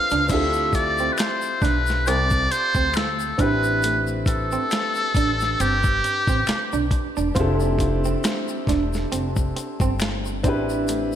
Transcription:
Already playing: C4 D4 F4 A4 B4 F5
0.10 C#2 D4, closed hi-hat, shaker
0.28 D2 C4 D4 E4 F4 E5, kick, closed hi-hat, crash, shaker
0.33 G4 A4
0.53 shaker
0.73 D5, muted clean electric guitar stroke, kick, closed hi-hat, shaker
0.98 C4, shaker
1.13 B4
1.18 C5, finger snap, snare, closed hi-hat, shaker
1.42 shaker
1.62 B1 D4 B4, kick, snare, closed hi-hat, shaker
1.87 snare, shaker
2.06 C2 C4 D5, closed hi-hat, shaker
2.30 kick, shaker
2.51 C5, muted clean electric guitar stroke, closed hi-hat, shaker
2.75 D2 C4, kick, shaker
2.94 A4, finger snap, snare, closed hi-hat, shaker
3.20 shaker
3.38 A1 C4 D4 E4 B4, kick, closed hi-hat, shaker
3.42 G4 B4
3.64 shaker
3.83 A3, closed hi-hat, shaker
4.07 shaker
4.26 A4, muted clean electric guitar stroke, kick, closed hi-hat, shaker
4.52 C4, shaker
4.71 finger snap, snare, closed hi-hat, shaker
4.95 shaker
5.15 A1 D4, kick, closed hi-hat, shaker
5.40 snare, shaker
5.60 G1 C4 G4, closed hi-hat, shaker
5.84 kick, shaker
6.04 muted clean electric guitar stroke, closed hi-hat, shaker
6.27 A1 C4, kick, shaker
6.47 finger snap, muted upright bass stroke, snare, closed hi-hat, shaker
6.73 B1 D4, shaker
6.91 muted clean electric guitar stroke, kick, closed hi-hat, shaker
7.17 E1 D4, shaker
7.35 F1 C4 D4 E4 F4 G4, kick, closed hi-hat, shaker
7.40 A4
7.60 shaker
7.79 muted clean electric guitar stroke, kick, closed hi-hat, shaker
8.05 C4, shaker
8.24 finger snap, snare, closed hi-hat, shaker
8.48 shaker
8.67 E1 D4, kick, snare, closed hi-hat, shaker
8.93 snare, shaker
9.12 F1 C4, closed hi-hat, shaker
9.36 kick, shaker
9.56 muted clean electric guitar stroke, closed hi-hat, shaker
9.80 G1 C4, kick, shaker
10.00 finger snap, snare, closed hi-hat, shaker
10.26 shaker
10.43 A1 C4 D4 E4, kick, closed hi-hat, shaker
10.48 G4 B4
10.70 shaker
10.88 A3, closed hi-hat, shaker

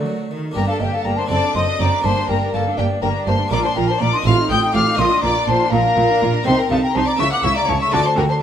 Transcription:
Already playing: A3 F#4 A4 A#4 D5
0.05 F#3
0.31 D#3
0.51 A#3 D4 G4
0.55 G1 G2 A#3 A#4 G5 A#5
0.67 D4 A4 F5 A5
0.79 G1 G2 A#3 G4 D#5 G5
0.92 D4 A4 F5 A5
1.05 G1 G2 A#3 A#4 G5 A#5
1.16 D4 C5 A5 C6
1.26 F#2 C4 D4 A4 A5
1.30 F#1 F#2 C4 D5 D6
1.43 D4
1.55 F#1 F#2 C4 D#5 C6 D#6
1.68 D4
1.79 F#1 F#2 C4 D5 A#5 D6
1.93 D4
2.01 G1 G2 A#3 D4 G4 C5
2.05 G2 A#3 A5 C6
2.18 D4
2.29 G1 G2 A#3 A#4 G5 A#5
2.42 D4
2.53 G1 G2 A#3 A4 F5 A5
2.67 D4
2.78 G1 G2 A#3 G4 D5 G5
2.91 D4
3.02 G1 G2 A#3 A#4 G5 A#5
3.16 D4
3.27 G1 G2 A#3 C5 A5 C6
3.40 D4
3.48 A#1 A#2 A#3 D4 F4 A#5 D6
3.52 A#2 D5
3.63 D4 C5 A5 C6
3.75 A#1 A#2 F4 A#4 G5 A#5
3.88 D4 C5 A5 C6
4.01 A#1 A#2 F4 D5 A#5 D6
4.13 D4 D#5 C6 D#6
4.21 A1 A2 C4 D#4 F4 C6
4.26 A2 F4 F5 F6
4.39 D#4
4.49 A1 A2 F4 G5 D#6 G6
4.62 D#4
4.74 A1 A2 F4 F5 D6 F6
4.88 D#4
4.95 A#2 A#3 D4 F4
4.99 A#1 A#2 F4 D#5 C6 D#6
5.12 D4
5.23 A#1 A#2 F4 D5 A#5 D6
5.36 D4
5.47 A#1 A#2 F4 C5 A5 C6
5.61 D4
5.72 A#1 A#2 F4 A#4 F5 A#5
5.85 D4
5.97 A#1 A#2 F4
6.10 D4
6.21 A#1 A#2 F4
6.34 D4
6.43 C2 C3 C4 D#4 C5 G5 C6
6.58 A#4 G5 A#5
6.70 C2 C3 D#4 A4 F5 A5
6.83 A#4 G5 A#5
6.95 C2 C3 D#4 C5 A5 C6
7.07 D5 A#5 D6
7.16 C#2 C#3 A#3 E4 E5 C#6 E6
7.32 F#5 D6 F#6
7.43 C#2 C#3 E4 E5 C#6 E6
7.56 D5 A#5 D6
7.68 C#2 C#3 E4 C#5 A5 C#6
7.81 E5 C#6 E6
7.88 D3 A3 D4 F#4
7.93 D2 D3 F#4 D5 A5 D6
8.05 C5 A5 C6
8.17 D2 D3 F#4 A#4 G5 A#5
8.29 C5 A5 C6

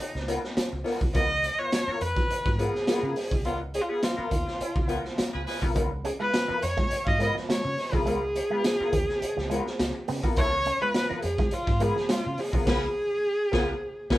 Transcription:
Already playing: D#4
0.00 muted hollow-body jazz guitar stroke, closed hi-hat
0.14 C#2, muted hollow-body jazz guitar stroke, snare
0.28 B3 F4 A#4, closed hi-hat
0.42 muted hollow-body jazz guitar stroke, snare
0.56 muted hollow-body jazz guitar stroke, muted fingered electric bass stroke, snare, closed hi-hat
0.72 C#2, muted hollow-body jazz guitar stroke
0.84 B3 F4 A#4, snare, open hi-hat
1.01 C2, muted hollow-body jazz guitar stroke, kick
1.13 C#2 B3 F4 A#4 D#5, kick, closed hi-hat
1.28 muted hollow-body jazz guitar stroke
1.43 muted hollow-body jazz guitar stroke, closed hi-hat
1.58 B3 F4 B4 C#5
1.72 muted hollow-body jazz guitar stroke, snare, closed hi-hat
1.88 B3 F4 A#4, muted fingered electric bass stroke
2.01 F2 B4, muted hollow-body jazz guitar stroke, closed hi-hat
2.17 muted hollow-body jazz guitar stroke, kick, snare
2.30 muted hollow-body jazz guitar stroke, muted fingered electric bass stroke, closed hi-hat
2.46 G#2, muted hollow-body jazz guitar stroke, kick, snare
2.59 B3 F4 G#4 A#4, closed hi-hat
2.74 muted hollow-body jazz guitar stroke, snare
2.87 B3 F4 A#4, snare, closed hi-hat
3.03 C#3
3.16 muted hollow-body jazz guitar stroke, snare, open hi-hat
3.31 C2, muted hollow-body jazz guitar stroke, kick
3.45 C#2 B3 F4 A#4, closed hi-hat
3.61 muted hollow-body jazz guitar stroke
3.74 G#4, muted hollow-body jazz guitar stroke, closed hi-hat
3.82 F4
3.89 B3 F4 G#4 B4
4.03 F4, muted hollow-body jazz guitar stroke, snare, closed hi-hat
4.17 B3 F4 A#4, muted fingered electric bass stroke
4.31 D#2, muted hollow-body jazz guitar stroke, kick, closed hi-hat
4.46 muted hollow-body jazz guitar stroke, snare
4.60 muted hollow-body jazz guitar stroke, muted fingered electric bass stroke, closed hi-hat
4.75 C#2, muted hollow-body jazz guitar stroke, kick
4.88 B3 F4 G#4 A#4 B4, closed hi-hat
5.04 muted hollow-body jazz guitar stroke, snare
5.18 muted hollow-body jazz guitar stroke, muted fingered electric bass stroke, snare, closed hi-hat
5.33 C#2 F4 G#4 B4, muted hollow-body jazz guitar stroke
5.46 F4 G#4 B4, snare, open hi-hat
5.61 C2 B3 F4 A#4, kick
5.75 C#2 B3 F4 A#4, kick, closed hi-hat
5.90 muted hollow-body jazz guitar stroke, muted clean electric guitar stroke
6.04 C#4 G#4, muted hollow-body jazz guitar stroke, closed hi-hat
6.19 G#3 B3 F4 B4
6.32 muted hollow-body jazz guitar stroke, snare, closed hi-hat
6.48 F3 B3 F4 A#4, muted fingered electric bass stroke
6.62 F2 C#5, muted clean electric guitar stroke, muted hollow-body jazz guitar stroke, closed hi-hat
6.77 G#3, muted hollow-body jazz guitar stroke, kick, snare
6.90 muted clean electric guitar stroke, muted fingered electric bass stroke, muted hollow-body jazz guitar stroke, closed hi-hat
7.04 G#2 D#5 F5, muted hollow-body jazz guitar stroke, kick
7.19 G#3 B3 F4 A#4 D#5, closed hi-hat
7.35 F3, muted hollow-body jazz guitar stroke, snare
7.48 G#3 C#5, muted hollow-body jazz guitar stroke, snare, closed hi-hat
7.64 C#3, muted hollow-body jazz guitar stroke
7.78 muted clean electric guitar stroke, snare, open hi-hat
7.92 C2 F3 B3 F4 G#4 A#4, kick
8.06 C#2 G#3 B3 F4 A#4, closed hi-hat
8.23 muted hollow-body jazz guitar stroke
8.36 muted clean electric guitar stroke, muted hollow-body jazz guitar stroke, closed hi-hat
8.50 G#3 B3 F4 B4
8.64 muted hollow-body jazz guitar stroke, snare, closed hi-hat
8.80 B3 F4 A#4, muted fingered electric bass stroke
8.93 D#2 F3, muted hollow-body jazz guitar stroke, kick, closed hi-hat
9.09 muted hollow-body jazz guitar stroke, snare
9.21 muted clean electric guitar stroke, muted fingered electric bass stroke, muted hollow-body jazz guitar stroke, closed hi-hat
9.37 C#2 F3, muted hollow-body jazz guitar stroke, snare
9.50 G#3 B3 F4 A#4, closed hi-hat
9.66 muted hollow-body jazz guitar stroke, snare
9.79 C#2, muted clean electric guitar stroke, muted hollow-body jazz guitar stroke, snare, closed hi-hat
9.95 muted hollow-body jazz guitar stroke
10.08 C#3 B3, snare, open hi-hat
10.23 B3 F4 A#4, kick
10.36 C#2 B3 F4 A#4 C#5, kick, closed hi-hat
10.52 muted clean electric guitar stroke, muted hollow-body jazz guitar stroke
10.65 C#4, muted hollow-body jazz guitar stroke, closed hi-hat
10.80 G#3 B3 F4 B4
10.94 muted hollow-body jazz guitar stroke, snare, closed hi-hat
11.09 F3 B3 F4 A#4, muted fingered electric bass stroke
11.22 F2 G#4, muted hollow-body jazz guitar stroke, muted clean electric guitar stroke, closed hi-hat
11.38 G#3, muted hollow-body jazz guitar stroke, kick, snare
11.51 F4, muted hollow-body jazz guitar stroke, muted clean electric guitar stroke, muted fingered electric bass stroke, closed hi-hat
11.67 G#2, muted hollow-body jazz guitar stroke, kick, snare
11.80 G#3 B3 F4 G#4 A#4, closed hi-hat
11.95 F3, muted hollow-body jazz guitar stroke, snare
12.09 G#3 F4, muted hollow-body jazz guitar stroke, snare, closed hi-hat
12.24 C#3, muted hollow-body jazz guitar stroke
12.38 G#4, muted clean electric guitar stroke, snare, open hi-hat
12.52 C2 F3 B3 F4 G#4 A#4, kick
12.66 C#2 B3 F4 G#4 A#4 B4, kick, snare, crash
13.52 C#2 B3 F4 G#4 A#4 B4, kick, snare
14.10 C#2 B3 F4 G#4 A#4 B4, kick, snare

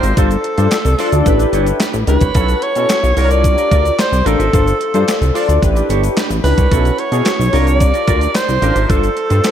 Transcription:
Already playing: C5
0.03 G#1 F4 A#4 E5, closed hi-hat, shaker
0.17 G1 D4 F4 A4 C5, kick, closed hi-hat, shaker
0.30 muted clean electric guitar stroke, closed hi-hat, shaker
0.44 muted clean electric guitar stroke, closed hi-hat
0.58 G2 D4 F4 A4 C5, closed hi-hat, shaker
0.71 muted clean electric guitar stroke, snare, clap, closed hi-hat, shaker
0.85 C2, muted clean electric guitar stroke, shaker
0.98 D4 F4 A4 C5 D5, open hi-hat, shaker
1.12 D2, muted clean electric guitar stroke, closed hi-hat, shaker
1.26 A1 D4 E4 G4 B4, muted clean electric guitar stroke, kick, closed hi-hat, shaker
1.39 D4 G4 B4, closed hi-hat, shaker
1.53 G1 D4 G4 C#5, closed hi-hat, shaker
1.66 muted clean electric guitar stroke, closed hi-hat, shaker
1.80 D4 G4 B4, snare, clap, closed hi-hat, shaker
1.94 A1 G4 B4, muted clean electric guitar stroke, shaker
2.07 C#2 D4 E4 G4 B4, muted clean electric guitar stroke, closed hi-hat, shaker
2.21 C2 D4 G4 C#5, kick, closed hi-hat, shaker
2.35 B1 C#4 E4 F#4 A4 C#5, kick, closed hi-hat, shaker
2.48 muted clean electric guitar stroke, closed hi-hat, shaker
2.62 C#5, muted clean electric guitar stroke, closed hi-hat
2.75 B2 C#4 E4 F#4 A4 C#5, closed hi-hat, shaker
2.89 muted clean electric guitar stroke, snare, clap, closed hi-hat, shaker
3.03 B1, muted clean electric guitar stroke, shaker
3.17 C2 D4 F4 G4 A4 A#4 D5, open hi-hat, shaker
3.24 A#4
3.31 D5, muted clean electric guitar stroke, closed hi-hat, shaker
3.44 muted clean electric guitar stroke, kick, closed hi-hat, shaker
3.58 F4 A#4 D5, closed hi-hat, shaker
3.71 D2 F4 A#4 D5, kick, closed hi-hat, shaker
3.85 muted clean electric guitar stroke, closed hi-hat, shaker
3.98 C5, muted clean electric guitar stroke, snare, clap, closed hi-hat, shaker
4.12 C2 G4 C5, muted clean electric guitar stroke, shaker
4.25 A1 D4 F4 G4 A4 A#4 D5, closed hi-hat, shaker
4.39 G#1 F4 A#4 E5, closed hi-hat, shaker
4.53 G1 D4 F4 A4 C5, kick, closed hi-hat, shaker
4.67 muted clean electric guitar stroke, closed hi-hat, shaker
4.80 muted clean electric guitar stroke, closed hi-hat
4.94 G2 D4 F4 A4 C5, closed hi-hat, shaker
5.08 snare, clap, closed hi-hat, shaker
5.21 C2, muted clean electric guitar stroke, closed hi-hat, shaker
5.34 D4 F4 A4 C5 D5, open hi-hat, shaker
5.48 D2, muted clean electric guitar stroke, closed hi-hat, shaker
5.62 A1 D4 E4 G4 B4, muted clean electric guitar stroke, kick, closed hi-hat, shaker
5.75 D4 G4 B4, closed hi-hat, shaker
5.89 G1 D4 G4 C#5, closed hi-hat, shaker
6.03 muted clean electric guitar stroke, closed hi-hat, shaker
6.17 D4 G4 B4, snare, clap, closed hi-hat, shaker
6.30 A1 G4 D5, muted clean electric guitar stroke, closed hi-hat, shaker
6.44 C#2 D4 E4 G4 B4, muted clean electric guitar stroke, open hi-hat, shaker
6.57 C2 D4 G4 C#5, kick, closed hi-hat, shaker
6.71 B1 C#4 E4 F#4 A4 C#5, kick, closed hi-hat, shaker
6.85 muted clean electric guitar stroke, closed hi-hat, shaker
6.98 C#5, muted clean electric guitar stroke, closed hi-hat
7.12 B2 C#4 E4 F#4 G#4 A4 C#5, closed hi-hat, shaker
7.25 muted clean electric guitar stroke, snare, clap, closed hi-hat, shaker
7.40 B1, muted clean electric guitar stroke, shaker
7.52 C2 D4 F4 G4 A#4 D5, open hi-hat, shaker
7.67 D5, muted clean electric guitar stroke, closed hi-hat, shaker
7.80 muted clean electric guitar stroke, kick, closed hi-hat, shaker
7.94 F4 A#4 D5, closed hi-hat, shaker
8.07 D2 F4 A#4 D5, kick, closed hi-hat, shaker
8.21 muted clean electric guitar stroke, closed hi-hat, shaker
8.34 C5, muted clean electric guitar stroke, snare, clap, closed hi-hat, shaker
8.48 C2 G4 A#4, muted clean electric guitar stroke, shaker
8.62 A1 D4 F4 G4 A#4 D5, closed hi-hat, shaker
8.76 G#1 F4 A#4 E5, closed hi-hat, shaker
8.89 G1 D4 F4 A4 C5, kick, closed hi-hat, shaker
9.03 muted clean electric guitar stroke, closed hi-hat, shaker
9.17 muted clean electric guitar stroke, closed hi-hat
9.30 G2 D4 F4 A4 C5, closed hi-hat, shaker
9.44 muted clean electric guitar stroke, snare, clap, closed hi-hat, shaker

